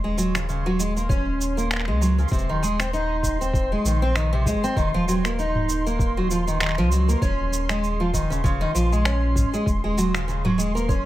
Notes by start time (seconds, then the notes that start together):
Already playing: D#1 C6
0.04 G#3
0.18 F#3, shaker
0.35 C#3, finger snap, shaker
0.49 C#3, shaker
0.66 F#3
0.79 G#3, shaker
0.96 A#3, shaker
1.09 C#4, kick, shaker
1.41 shaker
1.57 A#3, shaker
1.71 finger snap, shaker
1.74 finger snap
1.76 finger snap
1.80 finger snap
1.85 C#2 G#3, finger snap
2.01 F#3, shaker
2.18 C#3, shaker
2.28 D#1 C3, kick, shaker
2.33 shaker
2.39 shaker
2.49 D#3
2.63 G#3, shaker
2.80 C4, finger snap, shaker
2.93 D#4, shaker
3.23 kick, shaker
3.41 C4, shaker
3.54 kick, shaker
3.72 G#3
3.85 A#1 D#3, shaker
4.02 C4
4.16 D#3, finger snap, shaker
4.33 C3
4.46 G#3, kick, shaker
4.64 C4, shaker
4.76 D#1 D#3, kick, shaker
4.94 F3
5.08 F#3, shaker
5.25 A#3, finger snap, shaker
5.39 D#4, shaker
5.55 mid tom
5.69 shaker
5.86 A#3, shaker
5.99 kick, shaker
6.17 F#3
6.31 F3, shaker
6.47 D#3, shaker
6.60 D#3, finger snap, shaker
6.63 finger snap
6.66 finger snap
6.69 finger snap
6.71 finger snap
6.75 C#2 F3, finger snap
6.92 F#3, shaker
7.08 A#3, shaker
7.22 D#1 C#4, kick, shaker
7.53 shaker
7.69 G#3, finger snap, shaker
7.84 shaker
8.00 F3
8.13 D#3, kick, shaker
8.30 C#3, shaker
8.44 C#3, kick, shaker
8.61 D#3
8.75 A#1 F3, shaker
8.92 G#3, shaker
9.05 C#4, finger snap, shaker
9.36 kick, mid tom, shaker
9.54 G#3, shaker
9.66 D#1, kick, shaker
9.84 G#3
9.98 F#3, shaker
10.14 C#3, finger snap, shaker
10.28 C#3, shaker
10.45 F#3, mid tom
10.58 G#3, shaker
10.75 A#3, shaker
10.89 C#4, kick, shaker